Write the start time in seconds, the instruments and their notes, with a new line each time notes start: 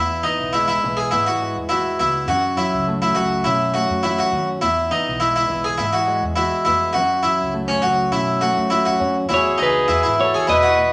Already playing: upright bass E2, nylon-string guitar E2 B3, harpsichord E4
0.23 nylon-string guitar E3, harpsichord D#4
0.39 upright bass B1
0.53 nylon-string guitar G#3, harpsichord E4
0.68 harpsichord E4
0.82 upright bass B1, nylon-string guitar E3
0.97 harpsichord G#4
1.11 upright bass G#2, nylon-string guitar B3, harpsichord E4
1.26 harpsichord F#4
1.42 nylon-string guitar G#3
1.56 upright bass E2
1.69 harpsichord E4, nylon-string guitar F#4
1.99 upright bass C#2, nylon-string guitar B3, harpsichord E4
2.27 upright bass F#2, nylon-string guitar F#2, harpsichord F#4
2.57 nylon-string guitar F#3, harpsichord E4
2.73 upright bass C#2
2.88 nylon-string guitar A3
3.02 harpsichord E4
3.15 nylon-string guitar F#3, harpsichord F#4
3.44 upright bass B2, nylon-string guitar C#4, harpsichord E4
3.74 nylon-string guitar A3, harpsichord F#4
3.90 upright bass F#2
4.03 harpsichord E4, nylon-string guitar F#4
4.19 harpsichord F#4
4.33 upright bass D#3, nylon-string guitar C#4
4.61 nylon-string guitar E2, upright bass E2, harpsichord E4
4.91 nylon-string guitar E3, harpsichord D#4
5.07 upright bass B1
5.20 nylon-string guitar G#3, harpsichord E4
5.36 harpsichord E4
5.49 upright bass B1, nylon-string guitar E3
5.64 harpsichord G#4
5.78 upright bass G#2, nylon-string guitar B3, harpsichord E4
5.93 harpsichord F#4
6.08 nylon-string guitar G#3
6.23 upright bass E2
6.36 harpsichord E4, nylon-string guitar F#4
6.65 upright bass F2, nylon-string guitar B3, harpsichord E4
6.93 upright bass F#2, nylon-string guitar F#2, harpsichord F#4
7.23 nylon-string guitar F#3, harpsichord E4
7.41 upright bass C#2
7.54 nylon-string guitar A3
7.68 harpsichord C#4
7.82 upright bass C#2, nylon-string guitar F#3, harpsichord F#4
8.12 upright bass B2, nylon-string guitar C#4, harpsichord E4
8.41 nylon-string guitar A3, harpsichord F#4
8.57 upright bass F#2
8.70 harpsichord E4, nylon-string guitar F#4
8.85 harpsichord F#4
9.00 upright bass F#2, nylon-string guitar C#4
9.29 upright bass E2, nylon-string guitar E2 F#4, harpsichord E4
9.34 trumpet G#4, clean electric guitar C#5
9.58 upright bass C#2, harpsichord D#4
9.63 trumpet G#4, clean electric guitar B4
9.88 upright bass E2, nylon-string guitar E3 B3, harpsichord E4
10.03 upright bass G#2, harpsichord E4
10.19 nylon-string guitar F#4, trumpet A4, clean electric guitar C#5
10.34 harpsichord G#4
10.47 upright bass E2, nylon-string guitar B2, harpsichord E4, trumpet B4, clean electric guitar D#5
10.63 harpsichord F#4
10.78 nylon-string guitar B3